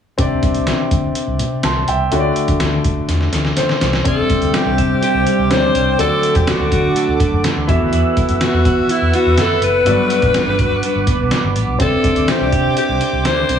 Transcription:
0.18 fingered electric bass C2, grand piano C3 C4 D4 G4 D5, kick, closed hi-hat
0.43 fingered electric bass C2, kick, closed hi-hat
0.54 closed hi-hat
0.67 snare, closed hi-hat
0.91 fingered electric bass D2, kick, closed hi-hat
1.15 closed hi-hat
1.27 fingered electric bass C2
1.39 fingered electric bass C3, closed hi-hat
1.63 fingered electric bass C2, grand piano A5 C6, snare, closed hi-hat
1.88 fingered electric bass C2, grand piano E5 G5, closed hi-hat
2.11 fingered electric bass D2, grand piano D3 A3 D4 F#4 C#5, closed hi-hat
2.19 grand piano D5
2.36 closed hi-hat
2.48 fingered electric bass D3, kick, closed hi-hat
2.60 fingered electric bass D2, snare, closed hi-hat
2.84 kick, closed hi-hat
3.09 fingered electric bass E2, snare, closed hi-hat
3.21 snare
3.33 fingered electric bass D2, snare, closed hi-hat
3.45 snare
3.57 grand piano C5, snare, closed hi-hat
3.69 snare
3.81 fingered electric bass C2, snare, closed hi-hat
3.93 snare
4.04 fingered electric bass C2, grand piano C3 C4 D4 G4 D5, clean electric guitar G3, alto saxophone A4, analog synth pad C5 D5 G5 D6, kick, closed hi-hat
4.30 clean electric guitar C4, kick, closed hi-hat
4.42 fingered electric bass D2, closed hi-hat
4.54 clean electric guitar G3, alto saxophone G4, snare, closed hi-hat
4.66 fingered electric bass C2
4.78 fingered electric bass C3, clean electric guitar D4, kick, closed hi-hat
5.02 clean electric guitar C4, alto saxophone G4, closed hi-hat
5.14 fingered electric bass C2
5.26 clean electric guitar G3, closed hi-hat
5.39 fingered electric bass C2
5.50 fingered electric bass D2, grand piano C4 D4 G4 C#5, clean electric guitar C4, alto saxophone C5, snare, closed hi-hat
5.57 grand piano D5
5.75 fingered electric bass C2, clean electric guitar G3, closed hi-hat
5.98 fingered electric bass D2, grand piano D3 A3 D4 F#4 D5, clean electric guitar F#3, analog synth pad A4 F#5, alto saxophone A4, closed hi-hat
6.23 clean electric guitar A3, closed hi-hat
6.35 fingered electric bass E2, alto saxophone G4, kick, closed hi-hat
6.47 clean electric guitar F#3, alto saxophone F#4, snare, closed hi-hat
6.60 fingered electric bass D2
6.72 fingered electric bass D3, clean electric guitar D4, alto saxophone F#4, kick, closed hi-hat
6.96 clean electric guitar A3, closed hi-hat
7.08 fingered electric bass D2
7.20 clean electric guitar F#3, kick, closed hi-hat
7.32 fingered electric bass F#2
7.44 clean electric guitar A3, snare, closed hi-hat
7.56 fingered electric bass D2
7.67 fingered electric bass E2, grand piano E3 B3 E4 F#4 E5, clean electric guitar E3, analog synth pad B4 E5 F#5 E6, kick, closed hi-hat
7.81 fingered electric bass D2
7.93 fingered electric bass E2, clean electric guitar E3, closed hi-hat
8.17 clean electric guitar E4, kick, closed hi-hat
8.29 fingered electric bass F#2, closed hi-hat
8.41 clean electric guitar B3, alto saxophone F#4, snare, closed hi-hat
8.53 fingered electric bass E2
8.65 fingered electric bass E3, clean electric guitar F#4, kick, closed hi-hat
8.89 clean electric guitar E4, alto saxophone E4, closed hi-hat
9.01 fingered electric bass E2
9.13 clean electric guitar B3, alto saxophone F#4, closed hi-hat
9.26 fingered electric bass E2
9.38 fingered electric bass F#2, clean electric guitar E4, alto saxophone A4, snare, closed hi-hat
9.62 fingered electric bass F#1, clean electric guitar B3, alto saxophone B4, closed hi-hat
9.85 fingered electric bass G1, grand piano G2 B3 F#4 B4 D5, clean electric guitar F#3, analog synth pad D6, closed hi-hat
10.10 clean electric guitar D4, closed hi-hat
10.22 fingered electric bass A1, kick, closed hi-hat
10.34 clean electric guitar B3, snare, closed hi-hat
10.47 fingered electric bass G1
10.59 fingered electric bass G2, clean electric guitar F#4, kick, closed hi-hat
10.83 clean electric guitar D4, closed hi-hat
10.95 fingered electric bass G1
11.07 clean electric guitar B3, kick, closed hi-hat
11.19 fingered electric bass B1
11.31 clean electric guitar D4, snare, closed hi-hat
11.44 fingered electric bass G1
11.56 fingered electric bass A1, clean electric guitar B3, closed hi-hat
11.68 fingered electric bass B1
11.79 fingered electric bass C2, grand piano C3 C4 D4 G4 D5, clean electric guitar C4, alto saxophone A4, analog synth pad C5 D5, kick, closed hi-hat
12.04 clean electric guitar D4, kick, closed hi-hat
12.16 fingered electric bass D2, closed hi-hat
12.28 clean electric guitar C4, alto saxophone G4, snare, closed hi-hat
12.40 fingered electric bass C2
12.52 fingered electric bass C3, clean electric guitar G4, kick, closed hi-hat
12.77 clean electric guitar D4, alto saxophone G4, closed hi-hat
12.89 fingered electric bass C2
13.01 clean electric guitar C4, closed hi-hat
13.13 fingered electric bass C2
13.25 fingered electric bass D2, clean electric guitar D4, alto saxophone C5, snare, closed hi-hat
13.49 fingered electric bass C2, clean electric guitar C4, closed hi-hat

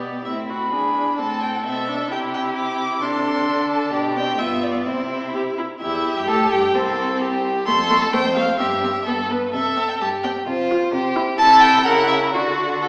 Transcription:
Already playing: cello B2, viola B3, violin G4 D5
0.24 cello A2, viola C4, violin E4 E5
0.49 violin F#4 B5
0.72 cello E2, viola D4, violin G#4
1.18 cello A2, viola C4, violin A4 A5
1.41 violin G5
1.55 violin F#5
1.64 cello B2, viola C4, violin A4 E5
1.88 viola D4
2.11 cello C3, viola E4, violin G4 G5
2.34 violin G5
2.56 violin D6
3.01 cello C3, viola D4, violin A4 C6
3.47 cello D3
3.70 violin A5
3.92 cello B2, viola D4, violin G4 D5
4.17 viola C4, violin G5
4.38 cello G2, viola B3, violin F4 E5
4.62 violin D5
4.85 cello C3, viola C4, violin E4 C5
5.34 viola G4
5.58 viola E4
5.80 cello E2, viola E4, violin G4 E5
6.17 cello G2, viola G4, violin G5
6.27 cello A2, viola A4, violin A5
6.51 cello G2, viola G4, violin G5
6.74 cello C2, viola C4, violin A4 C5
7.21 violin G4
7.66 cello F2, viola A3, violin A4 C6
7.90 viola A3
8.00 violin A5
8.12 cello F2, viola A3, violin C5 G5
8.35 viola A3, violin F5
8.58 cello G2, viola C4, violin G4 E5
8.83 viola C4
9.06 cello G2, viola B3, violin A4
9.30 viola B3, violin B4
9.53 cello C3, violin A4 E5
9.77 viola C4
9.89 violin G5
10.01 cello G2, violin G4 A5
10.23 viola C4, violin G5
10.46 cello C3, violin F4 C5
10.71 viola F4
10.93 cello C3, violin G4
11.16 viola E4
11.38 cello C3, viola E4, violin A4 A5
11.60 violin G5
11.85 cello C#3, viola E4, violin A#4 F#5
12.08 violin E5
12.32 cello D3, violin F#4 D5, viola F#4
12.82 violin A4

